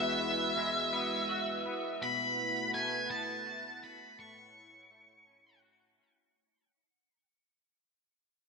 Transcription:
Already playing: clean electric guitar E2 G#3 B3 F#4, analog synth pad G#3 E4 F#4 B4 E5, lead electric guitar E5
0.57 clean electric guitar G#3
0.93 clean electric guitar B3
1.29 clean electric guitar F#4
1.66 clean electric guitar B3
2.01 clean electric guitar B2, analog synth pad A3 E4 B4 F#5, lead electric guitar B5
2.74 clean electric guitar A3, lead electric guitar G#5
3.10 clean electric guitar B3, lead electric guitar A5
3.46 clean electric guitar F#4
3.83 clean electric guitar B3, lead electric guitar B5
4.18 clean electric guitar A2, analog synth pad E4 C#5, lead electric guitar C#6
4.91 clean electric guitar A3
5.27 clean electric guitar C#4
5.62 clean electric guitar F#4
5.98 clean electric guitar C#4

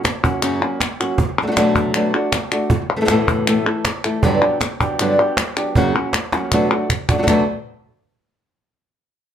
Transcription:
0.03 muted nylon-string guitar stroke, cajon slap, clap
0.23 nylon-string guitar F#3 A#3 C#4 F#4, cajon bass
0.42 nylon-string guitar F#2 C#3 F#3 A#3 C#4 F#4, clap
0.62 nylon-string guitar F#3 A#3 C#4 F#4
0.80 muted nylon-string guitar stroke, cajon slap, clap
1.00 nylon-string guitar F#3 A#3 C#4 F#4, clap
1.18 muted nylon-string guitar stroke, cajon bass
1.42 nylon-string guitar F#3 A3 D4 F#4
1.47 nylon-string guitar F#3 A3 D4 F#4
1.52 nylon-string guitar F#3 A3 D4 F#4
1.56 nylon-string guitar B2 F#3 A3 D4 F#4, cajon slap, clap
1.75 cajon bass
1.94 nylon-string guitar B2 F#3 A3 D4 F#4, cajon slap, clap
2.14 nylon-string guitar A3 D4 F#4
2.32 muted nylon-string guitar stroke, cajon slap, clap
2.52 nylon-string guitar A3 D4 F#4, clap
2.70 muted nylon-string guitar stroke, cajon bass
2.96 nylon-string guitar B2 E3 A3 E4 A4
3.01 nylon-string guitar B2 E3 A3 E4 A4
3.05 nylon-string guitar B2 E3 A3 E4 A4, cajon slap, clap
3.10 nylon-string guitar A2 B2 E3 A3 E4 A4
3.28 cajon bass
3.47 nylon-string guitar A2 B2 E3 A3 E4 A4, cajon slap, clap
3.67 nylon-string guitar E3 A3 E4 A4
3.85 muted nylon-string guitar stroke, cajon slap, clap
4.04 nylon-string guitar E3 A3 E4 A4, clap
4.23 nylon-string guitar G2 D3 F#3 B3 D4 G4, cajon bass
4.41 nylon-string guitar F#3 B3 D4 G4, cajon slap
4.60 muted nylon-string guitar stroke, cajon slap, clap
4.80 nylon-string guitar F#3 B3 D4 G4, cajon bass
4.99 nylon-string guitar G2 D3 F#3 B3 D4 G4, cajon slap, clap
5.20 nylon-string guitar F#3 B3 D4 G4
5.37 muted nylon-string guitar stroke, cajon slap, clap
5.57 nylon-string guitar F#3 B3 D4 G4, cajon slap, clap
5.75 nylon-string guitar F#2 C#3 F#3 A#3 C#4 F#4, cajon bass
5.95 nylon-string guitar F#3 A#3 C#4 F#4, cajon slap
6.13 muted nylon-string guitar stroke, cajon slap, clap
6.32 nylon-string guitar F#3 A#3 C#4 F#4, cajon slap
6.52 nylon-string guitar B2 F#3 A3 D4 F#4, cajon bass, clap
6.71 nylon-string guitar A3 D4 F#4
6.90 muted nylon-string guitar stroke, cajon bass, clap
7.09 nylon-string guitar A3 D4 F#4, cajon bass, clap
7.18 nylon-string guitar F#3 A3 D4 F#4
7.23 nylon-string guitar F#3 A3 D4 F#4
7.27 nylon-string guitar B2 F#3 A3 D4 F#4, cajon bass, clap

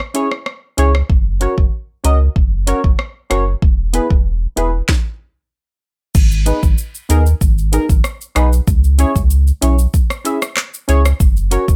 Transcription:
0.00 cross-stick
0.14 synth stab C#4 E4 G#4 C#5, closed hi-hat
0.32 cross-stick
0.46 cross-stick
0.77 sub bass C#2, synth stab C#4 E4 G#4 C#5, closed hi-hat
0.95 cross-stick
1.10 sub bass F#1, kick
1.41 synth stab C#4 F#4 A#4 C#5, closed hi-hat
1.58 sub bass F#1, kick
2.04 sub bass C#2, synth stab C#4 F#4 A#4 D#5, closed hi-hat
2.36 sub bass F#1, kick
2.67 synth stab C#4 F#4 A#4 C#5, closed hi-hat
2.84 sub bass F#1, kick
2.99 cross-stick
3.30 sub bass F#1, synth stab C#4 F#4 A#4 C#5, cross-stick, closed hi-hat
3.62 sub bass E1, kick
3.93 synth stab B3 E4 G#4 B4, closed hi-hat
4.10 sub bass E1, kick
4.56 sub bass E1, synth stab B3 E4 G#4 B4, closed hi-hat
4.89 kick, snare
6.15 sub bass G#1, kick, crash, shaker
6.31 shaker
6.46 synth stab B3 D#4 G#4 B4, closed hi-hat, shaker
6.63 sub bass G#1, kick, shaker
6.78 shaker
6.95 shaker
7.09 sub bass D#2, synth stab B3 D#4 G#4 A#4, closed hi-hat, shaker
7.26 shaker
7.41 sub bass G#1, kick, shaker
7.58 shaker
7.72 synth stab B3 D#4 G#4 A#4, closed hi-hat, shaker
7.89 sub bass G#1, kick, shaker
8.04 cross-stick, shaker
8.21 shaker
8.35 sub bass B1, synth stab B3 D#4 G#4 B4, cross-stick, closed hi-hat, shaker
8.53 shaker
8.68 sub bass C#2, kick, shaker
8.84 shaker
8.98 synth stab C#4 E4 G#4 C#5, closed hi-hat, shaker
9.16 sub bass C#2, kick, shaker
9.30 shaker
9.47 shaker
9.61 sub bass B1, synth stab C#4 E4 G#4 C#5, closed hi-hat, shaker
9.79 shaker
9.94 kick, shaker
10.10 cross-stick, shaker
10.24 synth stab C#4 E4 G#4 E5, closed hi-hat, shaker
10.42 cross-stick, shaker
10.57 cross-stick, clap, shaker
10.74 shaker
10.88 sub bass C#2, synth stab C#4 E4 G#4 C#5, closed hi-hat, shaker
11.06 cross-stick, shaker
11.20 sub bass F#1, kick, shaker
11.37 shaker
11.51 synth stab C#4 F#4 A#4 C#5, closed hi-hat, shaker
11.68 sub bass F#1, kick, shaker

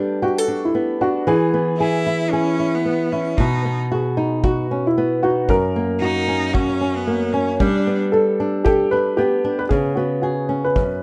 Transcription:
Already playing: nylon-string guitar G3 B3 D4 A4, upright piano G4
0.22 upright piano F#4, nylon-string guitar G4
0.38 nylon-string guitar A4
0.48 nylon-string guitar D4
0.65 upright piano E4
0.75 nylon-string guitar B3
1.01 nylon-string guitar D4, upright piano F#4
1.27 nylon-string guitar E3, upright piano G#4
1.54 nylon-string guitar B3
1.79 cello E4, nylon-string guitar G#4
2.06 nylon-string guitar E4
2.31 cello C#4, nylon-string guitar G#4
2.60 nylon-string guitar E4
2.75 cello B3
2.85 nylon-string guitar B3
3.12 cello C#4, nylon-string guitar E4
3.38 nylon-string guitar B2, cello D#4, kick
3.65 nylon-string guitar B3
3.92 nylon-string guitar F#4, upright piano G#4
4.17 nylon-string guitar D#4
4.44 nylon-string guitar F#4, upright piano F#4, kick
4.71 nylon-string guitar C#4
4.87 upright piano E4
4.98 nylon-string guitar B3
5.23 nylon-string guitar D#4, upright piano F#4
5.49 nylon-string guitar F#2, upright piano A#4, kick
5.76 nylon-string guitar A#3
6.01 cello D#4, nylon-string guitar F#4
6.28 nylon-string guitar C#4
6.53 cello C#4, nylon-string guitar F#4, kick
6.81 nylon-string guitar C#4
6.96 cello B3
7.07 nylon-string guitar A#3
7.33 cello C#4, nylon-string guitar C#4
7.60 nylon-string guitar G3, cello D4, kick
7.87 nylon-string guitar B3
8.12 upright piano A4, nylon-string guitar A4
8.40 nylon-string guitar D4
8.65 upright piano G4, nylon-string guitar A4, kick
8.91 nylon-string guitar D4, upright piano B4
9.17 nylon-string guitar B3, upright piano G4
9.44 nylon-string guitar D4
9.59 upright piano B4
9.69 nylon-string guitar C#3, upright piano G#4, kick
9.95 nylon-string guitar B3, upright piano F#4
10.22 upright piano F#4, nylon-string guitar G#4
10.49 nylon-string guitar C#4
10.64 upright piano B4
10.76 nylon-string guitar F#2, kick

